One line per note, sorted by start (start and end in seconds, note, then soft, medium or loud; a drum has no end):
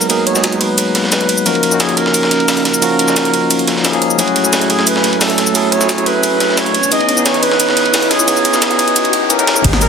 0.00 0.09 F#3 medium
0.00 0.34 G#3 medium
0.00 0.09 A#3 medium
0.00 0.10 B3 medium
0.00 0.10 D#4 medium
0.00 0.11 G#4 medium
0.00 1.43 G#4 medium
0.00 1.43 F#5 medium
0.00 1.43 A#5 medium
0.00 riser medium
0.00 shaker medium
0.09 0.32 F#3 medium
0.09 0.33 A#3 medium
0.09 0.33 B3 medium
0.09 0.34 D#4 medium
0.09 0.34 G#4 medium
0.09 0.26 A#4 loud
0.09 closed hi-hat medium
0.09 ride medium
0.09 shaker soft
0.26 0.62 C#5 loud
0.26 closed hi-hat medium
0.26 ride medium
0.33 1.43 F#3 medium
0.33 1.44 G#3 medium
0.33 1.44 B3 medium
0.33 1.45 D#4 medium
0.33 snare soft
0.33 shaker medium
0.38 1.45 G#4 medium
0.44 snare loud
0.44 closed hi-hat medium
0.44 ride medium
0.44 shaker soft
0.52 closed hi-hat soft
0.60 1.11 B4 loud
0.60 closed hi-hat medium
0.60 ride medium
0.78 closed hi-hat medium
0.78 ride medium
0.78 shaker soft
0.95 snare medium
0.95 closed hi-hat medium
0.95 ride medium
1.04 snare soft
1.12 1.48 B4 loud
1.12 snare loud
1.12 closed hi-hat medium
1.12 ride medium
1.12 shaker soft
1.21 closed hi-hat soft
1.29 closed hi-hat medium
1.29 ride medium
1.38 shaker medium
1.45 1.69 F3 medium
1.45 1.70 A#3 medium
1.45 1.70 C#4 medium
1.45 4.16 C#4 medium
1.45 1.70 D#4 medium
1.45 1.70 F#4 medium
1.45 1.82 A#4 loud
1.45 4.16 D#5 medium
1.45 4.16 F5 medium
1.45 closed hi-hat medium
1.45 ride medium
1.45 shaker soft
1.55 ride soft
1.63 closed hi-hat medium
1.63 ride medium
1.70 2.80 A#3 medium
1.70 2.80 C#4 medium
1.70 2.81 D#4 medium
1.70 2.79 F4 medium
1.70 shaker medium
1.74 2.82 F#4 medium
1.80 1.99 G#4 medium
1.80 snare loud
1.80 closed hi-hat medium
1.80 ride medium
1.80 shaker soft
1.89 closed hi-hat soft
1.97 2.65 A#4 loud
1.97 closed hi-hat medium
1.97 ride medium
2.06 snare medium
2.14 closed hi-hat medium
2.14 ride medium
2.14 shaker soft
2.23 snare medium
2.31 snare soft
2.31 closed hi-hat medium
2.31 ride medium
2.40 ride soft
2.48 snare loud
2.48 closed hi-hat medium
2.48 open hi-hat medium
2.48 shaker soft
2.57 closed hi-hat soft
2.65 3.71 A#4 medium
2.65 snare soft
2.65 closed hi-hat medium
2.65 ride medium
2.74 shaker medium
2.81 3.06 F3 medium
2.81 3.06 A#3 medium
2.81 3.06 C#4 medium
2.81 3.06 D#4 medium
2.81 3.07 F#4 medium
2.81 closed hi-hat medium
2.81 ride medium
2.81 shaker soft
2.99 closed hi-hat medium
2.99 ride medium
3.06 3.82 A#3 medium
3.06 3.83 C#4 medium
3.06 3.84 D#4 medium
3.06 3.82 F4 medium
3.06 snare medium
3.06 shaker medium
3.10 3.84 F#4 medium
3.16 snare loud
3.16 closed hi-hat medium
3.16 ride medium
3.16 shaker soft
3.25 closed hi-hat soft
3.34 closed hi-hat medium
3.34 ride medium
3.51 closed hi-hat medium
3.51 ride medium
3.51 shaker soft
3.59 closed hi-hat soft
3.67 snare soft
3.67 closed hi-hat medium
3.67 ride medium
3.77 snare soft
3.83 3.91 F3 medium
3.83 3.91 A#3 medium
3.83 3.91 C#4 medium
3.83 3.92 D#4 medium
3.83 3.92 G#4 medium
3.83 snare loud
3.83 closed hi-hat medium
3.83 ride medium
3.83 shaker soft
3.92 4.16 F3 medium
3.92 4.16 A#3 medium
3.92 4.17 C#4 medium
3.92 4.17 D#4 medium
3.92 4.17 G#4 medium
3.92 closed hi-hat soft
4.02 closed hi-hat medium
4.02 ride medium
4.10 shaker medium
4.17 4.41 F#3 medium
4.17 4.42 A3 medium
4.17 6.72 A3 medium
4.17 4.42 C#4 medium
4.17 4.43 E4 medium
4.17 4.72 F#4 medium
4.17 4.43 G#4 medium
4.17 6.72 E5 medium
4.17 6.72 G#5 medium
4.17 closed hi-hat medium
4.17 ride medium
4.17 shaker soft
4.28 ride soft
4.36 closed hi-hat medium
4.36 ride medium
4.42 5.52 F#3 medium
4.42 5.53 A3 medium
4.42 5.53 C#4 medium
4.42 5.54 E4 medium
4.42 shaker medium
4.47 5.54 G#5 medium
4.53 snare loud
4.53 closed hi-hat medium
4.53 ride medium
4.53 shaker soft
4.61 closed hi-hat soft
4.70 4.87 G#4 medium
4.70 closed hi-hat medium
4.70 ride medium
4.79 snare medium
4.87 5.23 B4 medium
4.87 closed hi-hat medium
4.87 ride medium
4.87 shaker soft
4.96 snare medium
5.04 snare soft
5.04 closed hi-hat medium
5.04 ride medium
5.13 ride soft
5.21 5.54 A4 medium
5.21 snare loud
5.21 closed hi-hat medium
5.21 open hi-hat medium
5.21 shaker soft
5.30 closed hi-hat soft
5.38 snare soft
5.38 closed hi-hat medium
5.38 ride medium
5.47 shaker medium
5.54 5.77 F#3 medium
5.54 5.79 A3 medium
5.54 5.79 C#4 medium
5.54 5.79 E4 medium
5.54 5.79 G#4 medium
5.54 5.74 A4 loud
5.54 closed hi-hat medium
5.54 ride medium
5.54 shaker soft
5.72 6.08 C#5 loud
5.72 closed hi-hat medium
5.72 ride medium
5.78 6.72 F#3 medium
5.78 6.73 A3 medium
5.78 6.73 C#4 medium
5.78 6.74 E4 medium
5.78 snare medium
5.78 shaker medium
5.83 6.75 G#4 medium
5.89 snare loud
5.89 closed hi-hat medium
5.89 ride medium
5.89 shaker soft
5.98 closed hi-hat soft
6.06 6.59 B4 loud
6.06 closed hi-hat medium
6.06 ride medium
6.23 closed hi-hat medium
6.23 ride medium
6.23 shaker soft
6.40 snare soft
6.40 closed hi-hat medium
6.40 ride medium
6.49 snare soft
6.58 6.91 C#5 loud
6.58 snare loud
6.58 closed hi-hat medium
6.58 ride medium
6.58 shaker soft
6.66 closed hi-hat soft
6.74 9.62 E3 medium
6.74 9.61 B3 medium
6.74 9.61 C#5 medium
6.74 9.61 D#5 medium
6.74 closed hi-hat medium
6.74 ride medium
6.83 shaker medium
6.90 7.14 E3 medium
6.90 7.15 B3 medium
6.90 7.15 C#4 medium
6.90 7.16 D#4 medium
6.90 7.16 G#4 medium
6.90 7.27 D#5 loud
6.90 closed hi-hat loud
6.90 ride medium
6.90 shaker soft
7.00 ride soft
7.09 closed hi-hat medium
7.09 ride medium
7.15 8.25 E3 medium
7.15 8.25 B3 medium
7.15 8.26 C#4 medium
7.15 8.26 D#4 medium
7.15 shaker medium
7.20 8.27 G#4 medium
7.26 7.44 C#5 loud
7.26 snare loud
7.26 closed hi-hat medium
7.26 ride medium
7.26 shaker soft
7.34 closed hi-hat soft
7.43 8.12 B4 loud
7.43 closed hi-hat medium
7.43 ride medium
7.52 snare medium
7.60 closed hi-hat medium
7.60 ride medium
7.60 shaker medium
7.69 snare medium
7.77 snare soft
7.77 closed hi-hat medium
7.77 ride medium
7.86 ride soft
7.94 snare loud
7.94 closed hi-hat medium
7.94 open hi-hat medium
7.94 shaker medium
8.02 closed hi-hat soft
8.11 9.47 G#4 medium
8.11 snare medium
8.11 closed hi-hat medium
8.11 ride medium
8.19 shaker medium
8.27 8.50 E3 medium
8.27 8.51 B3 medium
8.27 8.52 C#4 medium
8.27 8.52 D#4 medium
8.27 8.52 G#4 medium
8.27 closed hi-hat medium
8.27 ride medium
8.27 shaker soft
8.37 shaker soft
8.45 closed hi-hat medium
8.45 ride medium
8.45 shaker soft
8.51 9.27 E3 medium
8.51 9.28 B3 medium
8.51 9.29 C#4 medium
8.51 9.29 D#4 medium
8.51 snare medium
8.51 shaker medium
8.56 9.30 G#4 medium
8.62 snare loud
8.62 closed hi-hat medium
8.62 ride medium
8.62 shaker soft
8.71 closed hi-hat soft
8.79 closed hi-hat medium
8.79 ride medium
8.88 closed hi-hat soft
8.96 closed hi-hat loud
8.96 ride medium
8.96 shaker medium
9.05 closed hi-hat soft
9.05 ride soft
9.13 closed hi-hat medium
9.13 ride medium
9.29 9.36 E3 medium
9.29 9.37 B3 medium
9.29 9.37 C#4 medium
9.29 9.37 D#4 medium
9.29 9.37 A#4 medium
9.29 closed hi-hat medium
9.29 shaker medium
9.38 9.62 E3 medium
9.38 9.62 B3 medium
9.38 9.62 C#4 medium
9.38 9.63 D#4 medium
9.38 9.63 A#4 medium
9.38 closed hi-hat soft
9.38 shaker soft
9.47 snare loud
9.47 closed hi-hat medium
9.47 ride medium
9.56 shaker medium
9.63 9.88 G#1 medium
9.63 9.87 F#3 medium
9.63 9.88 A#3 medium
9.63 9.88 B3 medium
9.63 9.88 D#4 medium
9.63 9.88 G#4 medium
9.63 9.88 A#5 medium
9.63 kick loud
9.63 closed hi-hat loud
9.63 ride medium
9.63 crash loud
9.63 impact medium
9.73 snare medium
9.73 ride soft
9.81 9.88 A#4 loud
9.81 closed hi-hat medium
9.81 ride medium
9.81 shaker medium